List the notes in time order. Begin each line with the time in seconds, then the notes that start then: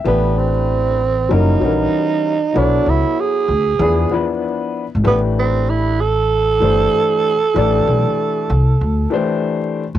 Already playing: E5
0.04 A1 E3 A3 B3 D4 G4 B4
0.38 C4
1.29 F#1 G3 C#4 D#4 E4 F#4 A#4
1.61 A#1 E3 G3 C#4 F#4 A#4
2.53 B1 F#3 B3 D4 E4 A4 C#5
2.86 C#2 E4
3.20 G#4
3.48 D2
3.79 E2 F3 B3 D4 E4 G#4
4.11 F3 B3 D4 E4 B4
4.95 G#1
5.04 A1 E3 A3 B3 D4 G4 B4
5.39 C4
5.70 E4
6.01 A4
6.60 G1 E3 A3 D4 G4 C5
7.54 A1 E3 A3 D4 G4 D5
7.87 B1
8.49 C2
8.81 D2
9.10 E3 A3 D4 G4 C5
9.95 G1